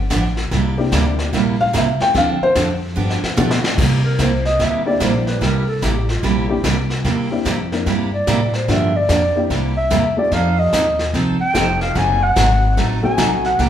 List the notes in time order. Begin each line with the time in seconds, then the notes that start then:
0.10 A1 D3 F3 B3 D4 G4, kick, snare, hi-hat pedal
0.37 snare
0.51 C2 C3 G3 A#3 E4 G4, brush sweep, kick, snare
0.77 A#3 C4 D4 E4 G4
0.92 D2 C3 G3 A#3 E4 G4, kick, snare, hi-hat pedal
1.19 snare
1.33 A#1 C3 G3 A#3 E4 G4, brush sweep, kick, snare
1.61 F5
1.73 C2 C3 G3 A#3 E4 G4, kick, snare, hi-hat pedal
1.78 E5
2.00 G5, muted upright bass stroke, snare
2.14 D2 D3 F3 C4 D4 A4 F5, brush sweep, kick, snare
2.41 C5, muted upright bass stroke
2.55 F2 D3 F3 C4 D4 A4, kick, snare, hi-hat pedal
2.96 G2 D3 F3 B3 D4 G4
3.10 snare
3.23 muted upright bass stroke, snare
3.37 B2 D3 F3 A3 B3 D4 F4 G4, hi-hat pedal, mid tom
3.51 snare
3.64 snare
3.78 C3 G3 A#3 E4 G4, brush sweep, kick, snare, crash
4.04 A#4
4.19 C2 C3 G3 A#3 E4 G4 C5, kick, snare, hi-hat pedal
4.45 D#5, snare
4.59 D2 C3 G3 A#3 E4 G4 E5, brush sweep, kick, snare
4.86 A#3 C4 D4 E4 G4 D5
5.00 A#1 C3 G3 A#3 E4 G4 C5, kick, snare, hi-hat pedal
5.27 B4, snare
5.41 C2 C3 G3 A#3 E4 G4 A#4, brush sweep, kick, snare
5.68 A4
5.82 A1 C3 G3 A#3 E4 G4, kick, snare, hi-hat pedal
6.09 F4, snare
6.23 A#1 C3 G3 A#3 E4 G4, brush sweep, kick, snare
6.49 A#3 C4 D4 E4 G4
6.64 C2 C3 G3 A#3 E4 G4, kick, snare, hi-hat pedal
6.90 snare
7.04 E2 C3 G3 A#3 E4 G4, brush sweep, kick, snare
7.31 A#3 C4 D4 E4 G4
7.45 F2 C3 G3 A#3 E4 G4, kick, snare, hi-hat pedal
7.72 A#3 C4 D4 E4 A#4, snare
7.86 G2 C3 G3 A#3 E4 G4, brush sweep, kick, snare
8.14 D5
8.27 A2 C3 G3 A#3 E4 G4, kick, snare, hi-hat pedal
8.54 C5, snare
8.68 G2 D3 F3 G3 A#3 D4 F4 G4 E5, brush sweep, kick, snare
8.96 D5
9.09 F2 D3 F3 A#3 D4 G4, kick, snare, hi-hat pedal
9.36 A#3 C4 D4 E4 G4
9.50 C2 C3 G3 A#3 E4 G4, brush sweep, kick, snare
9.77 E5
9.90 E2 C3 G3 A#3 E4 G4, kick, snare, hi-hat pedal
10.17 A3 C4 D#4 F4 G4 D5
10.32 F2 F3 C4 D#4 A4 F5, brush sweep, kick, snare
10.59 D#5
10.73 D#2 F3 C4 D#4 A4, kick, snare, hi-hat pedal
10.99 snare
11.14 C2 F3 C4 D#4 A4, brush sweep, kick, snare
11.40 G5, muted upright bass stroke
11.53 F1 F3 A3 C4 D#4 F4 G4 A4, kick, snare, hi-hat pedal
11.81 F5, snare
11.95 F#1 C3 F#3 A3 D#4 F#4 G#5, brush sweep, kick, snare
12.23 F#5
12.36 G#1 C3 F#3 A3 D#4 F#4, kick, snare, hi-hat pedal
12.77 A1 C3 F#3 A3 D#4 F#4, brush sweep, kick, snare
13.03 A3 C4 D#4 F#4 A4 G#5, muted upright bass stroke
13.18 B1 C3 F#3 A3 D#4 F#4, kick, snare, hi-hat pedal
13.44 F#5, snare
13.59 C2 C3 G3 A#3 E4 G4 A#5, brush sweep, kick, snare